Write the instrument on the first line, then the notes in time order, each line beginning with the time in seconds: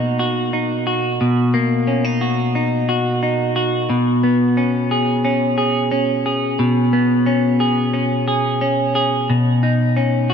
clean electric guitar
Already playing: B2 A#3 D#4 F#4
0.19 F#4
0.53 D#4
0.87 F#4
1.21 B2
1.54 A#3
1.87 C#4
2.04 D#4
2.21 F#4
2.55 D#4
2.89 F#4
3.23 D#4
3.56 F#4
3.90 B2
4.23 B3
4.57 C#4
4.91 G#4
5.25 C#4
5.58 G#4
5.91 C#4
6.26 G#4
6.59 B2
6.93 B3
7.26 C#4
7.60 G#4
7.94 C#4
8.28 G#4
8.61 C#4
8.95 G#4
9.30 B2
9.63 D#4
9.97 C#4
10.30 F#4